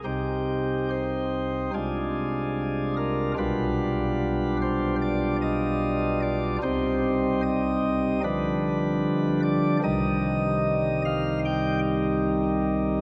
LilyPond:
<<
  \new Staff \with { instrumentName = "Pipe organ" } { \time 4/4 \key c \minor \tempo 4 = 74 g'4 c''4 aes'4. bes'8 | b'4. c''8 d''8 ees''4 d''8 | c''4 ees''4 b'4. d''8 | ees''4. f''8 g''8 r4. | }
  \new Staff \with { instrumentName = "Pipe organ" } { \clef bass \time 4/4 \key c \minor <c, c c' ees'>2 <c, c aes d' f'>2 | <b,, b, g d' f'>1 | <c, c g c' ees'>2 <d f g d'>2 | <c, c ees g ees'>1 | }
>>